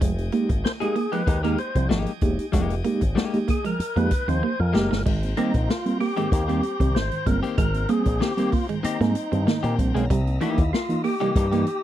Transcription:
Already playing: D#5 G5 G#5
0.01 F1 F3 G#3, kick, closed hi-hat
0.18 D#4 G4, closed hi-hat
0.32 G#3 A#3 D#4 G4, closed hi-hat
0.49 G#1, muted clean electric guitar stroke, kick, closed hi-hat
0.64 C5, muted clean electric guitar stroke, snare
0.80 G#3 A#3 D#4 G4 G#4, closed hi-hat
0.95 A#3, closed hi-hat
1.12 F3 G#3 A#3 D#4 G4 B4, closed hi-hat
1.26 D#2 G#3 A#3 D#4 G4, kick, closed hi-hat
1.43 G#3 A#3 D#4 G4 A#4, closed hi-hat
1.58 C5, muted clean electric guitar stroke, closed hi-hat
1.75 C2 F3 C4, kick, closed hi-hat
1.89 G#1 F3 G#3 A#3 D#4 G4, snare
2.06 closed hi-hat
2.21 E1 G#3 A#3 D#4 G4, kick, closed hi-hat
2.39 D#4 G4, closed hi-hat
2.52 F1 F3 G#3 A#3 D#4 G4, kick, closed hi-hat
2.70 D#4 G4, closed hi-hat
2.84 G#3 A#3 D#4 G4, closed hi-hat
3.01 G#1, muted clean electric guitar stroke, kick, closed hi-hat
3.15 G#3 A#3 D#4 G4, muted clean electric guitar stroke, snare
3.33 G#3 A#3 D#4 G4, closed hi-hat
3.48 A#3 G#4, kick, closed hi-hat
3.64 F3 G#3 A#4, closed hi-hat
3.79 muted picked electric bass stroke, closed hi-hat
3.96 F2 G#3 A#3 D#4 G4 B4, closed hi-hat
4.11 muted clean electric guitar stroke, kick, closed hi-hat
4.28 D#2 F3 C4 C5, closed hi-hat
4.43 A#3 D#4 G4
4.60 F2 F3 A#4, muted clean electric guitar stroke
4.73 F#1 G#3 A#3 D#4 G4, snare
4.91 G1 G#3, snare
5.06 G#1 G#2 D#3 G#3 C5 G5 A#5, kick, crash
5.23 A#3 C4, closed hi-hat
5.37 D#3 G3 A#3 C4 D#4 G4, closed hi-hat
5.54 A#1, muted clean electric guitar stroke, kick, closed hi-hat
5.69 F4, muted clean electric guitar stroke, snare
5.86 G3 A#3 C4, closed hi-hat
6.00 A#3 G4, open hi-hat
6.17 G#2 D#3 G#3 A#3 C4 G4, closed hi-hat
6.31 D#2 D#3 A#3 C4 G4, kick, closed hi-hat
6.48 D#3 G3 A#3 C4 G4, closed hi-hat
6.63 muted clean electric guitar stroke, closed hi-hat
6.80 C2 G#2 D#3 C4, kick, closed hi-hat
6.95 G#1 A#3 C4 C5, snare
7.11 G#2 D#3, closed hi-hat
7.26 G1 G3 G#3 A#3 C4 A#4, kick, closed hi-hat
7.43 D#3 A#3 C4 G4, closed hi-hat
7.58 G#1 G#2 D#3 G#3 A#4, kick, closed hi-hat
7.74 A#3 C4, closed hi-hat
7.89 G3 A#3 C4 G#4, closed hi-hat
8.05 A#1, muted clean electric guitar stroke, kick, closed hi-hat
8.20 D#3 A#3 C4 G4, muted clean electric guitar stroke, snare
8.37 D#3 G3 A#3 C4 G4, closed hi-hat
8.52 A#3 F4, kick, open hi-hat
8.69 G#2 D#3 G#3, closed hi-hat
8.83 D#3 A#3 C4 D#4 G4, muted picked electric bass stroke, closed hi-hat
9.00 G#2 G3 A#3 C4, snare, closed hi-hat
9.15 muted clean electric guitar stroke, closed hi-hat
9.32 G2 G#2 D#3 C4, closed hi-hat
9.47 G#2 D#3 A#3, snare
9.63 A#2 D#3 A#3 C4 G4, muted clean electric guitar stroke, closed hi-hat
9.78 A#1 G3 A#3 C4, kick, closed hi-hat
9.94 B1 D#3 G#3 A#3 C4 G#4, closed hi-hat
10.10 C2 C3 G3 D#5 E5, kick, closed hi-hat
10.26 A#3 D#4, closed hi-hat
10.41 E3 A#3 D#4 E4 G4, closed hi-hat
10.58 D#2, muted clean electric guitar stroke, kick, closed hi-hat
10.73 F4, muted clean electric guitar stroke, snare
10.89 E3 A#3 D#4, closed hi-hat
11.04 A#3 G4, open hi-hat
11.20 C3 E3 G3 A#3 D#4 G4, closed hi-hat
11.35 G2 E3 A#3 D#4 G4, kick, closed hi-hat
11.51 E3 A#3 D#4 G4, snare, closed hi-hat
11.66 muted clean electric guitar stroke, closed hi-hat

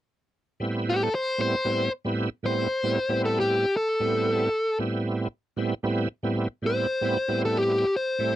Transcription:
0.60 A2 G3 B3 C4 E4
0.90 G4
1.03 A4
1.15 C5
1.38 A2 G3 B3 C4 E4 C5
1.65 A2 G3 B3 C4 E4
2.05 A2 G3 B3 C4 E4
2.43 A2 G3 B3 C4 E4 C5
2.83 A2 G3 B3 C4 E4
3.09 A2 G3 B3 C4 E4
3.25 A4
3.40 G4
3.77 A4
4.00 A2 G3 B3 C4 E4
4.79 A2 G3 B3 C4 E4
5.57 A2 G3 B3 C4 E4
5.83 A2 G3 B3 C4 E4
6.23 A2 G3 B3 C4 E4
6.62 A2 G3 B3 C4 E4
6.66 C5
7.01 A2 G3 B3 C4 E4
7.28 A2 G3 B3 C4 E4
7.45 A4
7.58 G4
7.96 C5
8.19 A2 G3 A3 C4 E4

